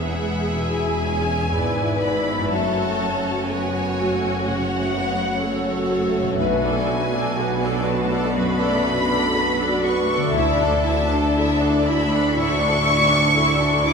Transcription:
Already playing: E1 E2 G#3 E4 G#4 E5
0.03 B3 F#5
0.19 G#3
0.53 B2 E4 G#4 G#5
0.87 G#3
1.04 C#4
1.21 E4
1.53 G#1 G#2 B3 E4 G#4 B4 D5
1.84 E4
2.02 E4 B5
2.16 G#3
2.32 F#2
2.37 A3
2.41 C#4
2.46 F#2 F#4
2.50 F#1 F#2 A3 F#4 A4 C#5 A5
2.84 A3
3.00 C#4
3.17 C#4
3.48 B3 F#4 A4 C#5 G#5
3.81 F#4
3.97 A3
4.13 A3
4.45 C#3 C#4 C#5 F#5
4.79 A3
4.94 B3
5.11 C#4
5.41 A3 F#4 A4 C#5
5.75 F#4
6.07 A3
6.22 B2
6.26 A3
6.31 D4
6.36 B1 B2 F#4 B4
6.40 B1 B3 F#4 G#5
6.64 D4 A4 D5
6.72 A3
6.88 B3 F#4 B4
7.06 D4
7.12 D4 A4 D5
7.37 B3 F#4 A4 B4
7.61 D4 A4 D5
7.71 F#4
7.84 B3 F#4 B4 A5
8.03 A3
8.09 D4 A4 D5
8.33 F#2 B3 F#4 B4 B5
8.58 D4 A4 D5
8.68 A3
8.83 B3 F#4 B4
9.01 D4
9.07 D4 A4 D5
9.33 B3 F#4 A4 B4
9.58 D4 A4 D5
9.69 F#4
9.83 B3 F#4 B4 C#6
10.01 A3
10.08 D4 A4 D5
10.17 D3
10.21 A3 D4
10.30 D2 E4 A5
10.34 D2 D5 E5
10.58 D4 A4 D5
10.67 A3
10.84 E4 D5 E5
11.03 D4
11.08 D4 A4 D5
11.35 E4 A4 D5 E5
11.60 D4 A4 D5
11.69 E4
11.85 E4 D5 E5 B5
12.05 A3
12.11 D4 A4 D5
12.35 A2 E4 D5 E5 C#6
12.59 D4 A4 D5
12.69 A3
12.84 E4 D5 E5
13.02 D4
13.09 D4 A4 D5
13.35 E4 A4 D5 E5
13.59 D4 A4 D5
13.70 E4
13.84 E4 D5 E5 D6

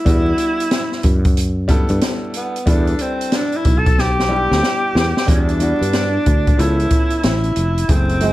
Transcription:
Already playing: E4
0.05 E2 G3 B3 D4 E4 F#4, kick, closed hi-hat
0.38 closed hi-hat
0.60 closed hi-hat
0.71 snare, closed hi-hat
0.92 snare
1.03 F#2, kick, closed hi-hat
1.25 kick, closed hi-hat
1.37 closed hi-hat
1.68 G3 B3 D4 E4 A4, kick, closed hi-hat
1.89 G2, closed hi-hat
2.01 snare, closed hi-hat
2.34 B3, closed hi-hat
2.56 closed hi-hat
2.66 E2 G3 D4 E4 A4 B4, kick, closed hi-hat
2.87 closed hi-hat
2.99 C4, closed hi-hat
3.21 closed hi-hat
3.32 D4, snare, closed hi-hat
3.52 closed hi-hat
3.56 E4
3.65 B1, kick, closed hi-hat
3.78 A4
3.86 kick, closed hi-hat
3.98 G4, snare
4.19 snare
4.29 G3 B3 D4 E4 G4
4.51 D2, snare
4.63 snare
4.95 E2, snare
5.17 snare
5.26 E2 G3 B3 D4 E4 F#4, kick, closed hi-hat
5.49 closed hi-hat
5.59 G3 B3 D4 E4 F#4, closed hi-hat
5.81 G2, closed hi-hat
5.93 snare, closed hi-hat
6.26 D2, kick, closed hi-hat
6.47 kick, closed hi-hat
6.57 C#2 F3 B3 C#4 E4 A4, closed hi-hat
6.80 closed hi-hat
6.90 kick, closed hi-hat
7.10 closed hi-hat
7.23 A1 E4, snare, closed hi-hat
7.43 closed hi-hat
7.56 F1, closed hi-hat
7.78 closed hi-hat
7.88 F#1 F#3 A3 C4 E4 G#4, kick, closed hi-hat
8.09 closed hi-hat
8.20 E3 F#3 G#3 C4 E4 F#4, closed hi-hat

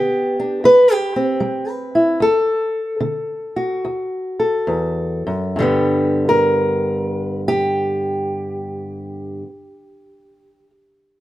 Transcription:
Already playing: D3 B3 G4
0.40 D4
0.64 C3 B4
0.92 G4
1.16 C4
1.40 G3
1.69 B4
1.95 E4
2.20 D2 A4
3.00 D3
3.56 F#4
3.85 D2
4.40 A4
4.67 E2
5.27 F#2
5.56 G2 D3
5.60 G3 B3
6.29 A#4
7.48 G4

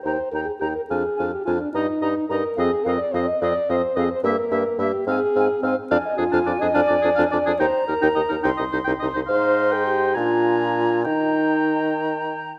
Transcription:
0.03 D#2 D#4 C5 G5 A#5
0.32 D#2 D#4 A#4 G5 A#5
0.45 G#4
0.59 D#2 D#4 G4 G5 A#5
0.75 A#4
0.89 F2 D4 G#4 F5 G#5
1.17 F2 D4 F5 G#5
1.31 G4
1.45 F2 D4 F4 F5 G#5
1.60 D4
1.73 G2 D#4 D#5 A#5
2.01 G2 D#4 D#5 A#5
2.29 G2 D#4 A#4 D#5 A#5
2.56 F2 C4 G#4 D#5 F5
2.84 F2 C4 A#4 F5
2.88 D#5
2.98 D5
3.12 F2 C4 C5 D#5 F5
3.27 D#5
3.41 F2 C4 D5 D#5 F5
3.69 F2 C4 C5 D#5 F5
3.96 F2 C4 G#4 D#5 F5
4.10 C5
4.23 G2 A#3 A#4 E5
4.31 A4
4.37 A#4
4.51 G2 A#3 E5
4.79 G2 A#3 G4 E5
5.06 G#2 C4 G#4 F5 G#5
5.35 G#2 C4 F5 G#5
5.62 G#2 C4 C5 F5 G#5
5.91 F2 D4 D5 F5 G#5
6.06 D#5
6.18 F2 D4 F4 G#4
6.31 F2 D4 F5
6.46 F2 D4 D5
6.60 F2 D4 G#4 D#5
6.74 F2 D4 D5 F5
6.87 F2 D4 D5
7.02 F2 D4 G#4
7.15 F2 D4 F5
7.31 F2 D4 D5
7.46 F2 D4 G#4
7.59 D#2 D#4 C5 G5 A#5
7.87 D#2 D#4 A#4
8.01 D#2 D#4 G5
8.15 D#2 D#4 D#5
8.29 D#2 D#4 A#4
8.43 C2 D#4 G5 C6
8.57 C2 D#4 D#5
8.72 C2 D#4 C5
8.84 C2 D#4 G5
8.99 C2 D#4 D#5
9.13 C2 D#4 C5
9.27 G#2 D#4 C5 F5 C6
9.72 G#4 G5
9.87 G4
10.15 A#2 D4 F4 G#5 A#5
11.05 D#3 D#4 G5 A#5

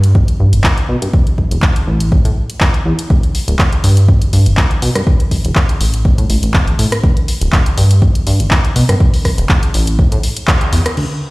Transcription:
Already playing: G2
0.04 closed hi-hat
0.15 kick
0.28 closed hi-hat
0.40 G2
0.53 G1, closed hi-hat
0.64 kick, clap
0.78 closed hi-hat
0.89 B2
1.02 G2, closed hi-hat
1.14 kick
1.27 closed hi-hat
1.38 kick
1.51 E1, closed hi-hat
1.62 kick, clap
1.76 closed hi-hat
1.87 A1
2.00 closed hi-hat
2.12 kick
2.25 A2, closed hi-hat
2.50 closed hi-hat
2.60 kick, clap
2.74 closed hi-hat
2.86 E2
2.99 closed hi-hat
3.10 D2, kick
3.23 closed hi-hat
3.35 open hi-hat
3.48 D1, closed hi-hat
3.59 kick, clap
3.73 closed hi-hat
3.84 G2, open hi-hat
3.97 closed hi-hat
4.08 kick
4.22 closed hi-hat
4.33 G2, open hi-hat
4.46 G1, closed hi-hat
4.57 kick, clap
4.71 closed hi-hat
4.82 B2, open hi-hat
4.95 G2, cross-stick, closed hi-hat
5.07 kick
5.20 closed hi-hat
5.31 kick, open hi-hat
5.45 E1, closed hi-hat
5.55 kick, clap
5.69 closed hi-hat
5.81 A1, open hi-hat
5.94 closed hi-hat
6.05 kick
6.18 A2, closed hi-hat
6.30 A1, open hi-hat
6.43 A1, closed hi-hat
6.54 kick, clap
6.67 A1, closed hi-hat
6.79 A2, open hi-hat
6.92 cross-stick, closed hi-hat
7.04 D2, kick
7.17 closed hi-hat
7.28 open hi-hat
7.41 D1, closed hi-hat
7.52 kick, clap
7.66 closed hi-hat
7.78 G2, open hi-hat
7.91 closed hi-hat
8.02 kick
8.15 closed hi-hat
8.27 G2, open hi-hat
8.40 G1, closed hi-hat
8.51 kick, clap
8.65 closed hi-hat
8.76 B2, open hi-hat
8.89 G2, cross-stick, closed hi-hat
9.00 kick
9.14 open hi-hat
9.25 kick, cross-stick, open hi-hat
9.38 E1, closed hi-hat
9.49 kick, clap
9.63 closed hi-hat
9.74 A1, open hi-hat
9.87 closed hi-hat
9.99 kick
10.12 A2, closed hi-hat
10.23 open hi-hat
10.37 closed hi-hat
10.47 kick, clap
10.61 closed hi-hat
10.73 E2, open hi-hat
10.86 cross-stick, closed hi-hat
10.97 D2, crash

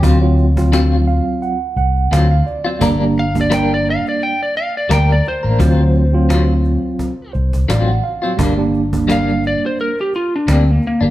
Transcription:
0.02 D2 D3 F#3 C4 F4, cajon bass
0.21 F#3 C4 F4
0.38 cajon slap
0.56 F#3 C4 F4, cajon bass
0.72 D3 F#3 C4 F4, cajon slap
1.07 F5, cajon slap
1.42 F#5, cajon slap
1.76 C2 F#5, cajon slap
1.96 cajon slap
2.11 D2 D3 F#3 C4 F4 F5, cajon slap
2.31 F5, cajon slap
2.46 D5, cajon slap
2.65 F#3 C4 F4, cajon slap
2.80 G1 G3 A#3 D4 A#4, cajon bass
3.00 G3 A#3 D4, cajon slap
3.17 F5, cajon slap
3.34 G3 A#3 D4, cajon bass
3.41 D5
3.50 G3 A#3 D4 A#4 G5, cajon slap
3.74 D5
3.86 cajon slap
3.90 F5
4.06 D5, cajon slap
4.21 G5, cajon slap
4.43 D5
4.55 F5, cajon slap
4.77 D5
4.89 D2 G3 A#3 D4 A#4 G5, cajon slap
5.10 D5, cajon slap
5.25 C5, cajon slap
5.43 A1 A#3 D4 A#4
5.59 D2 D3 F#3 C4 F4, cajon bass
5.78 F#3 C4 F4
5.95 cajon slap
6.12 F#3 C4 F4
6.29 D3 F#3 C4 F4, cajon slap
6.64 cajon slap
6.99 cajon bass, cajon slap
7.33 C2 C5, cajon slap
7.53 cajon bass
7.68 A1 D3 F#3 C4 F4 D5, cajon slap
7.88 F#5, cajon slap
8.04 F5
8.22 F#3 C4 F4, cajon slap
8.37 G1 G2 G3 A#3 D4, cajon bass
8.57 G3 A#3 D4, cajon slap
8.74 cajon slap
8.92 G3 A#3 D4, cajon bass
9.08 G2 G3 A#3 D4, cajon slap
9.12 F5
9.28 cajon slap
9.43 D5, cajon slap
9.66 C5
9.78 A#4, cajon slap
9.97 G4, cajon slap
10.13 F4, cajon slap
10.36 D4
10.47 D2 G2 G3 A#3 D4, cajon slap
10.51 C4
10.67 cajon slap
10.71 A#3
10.82 cajon slap
10.87 A#3
11.01 G1 G3 A#3 D4, cajon slap

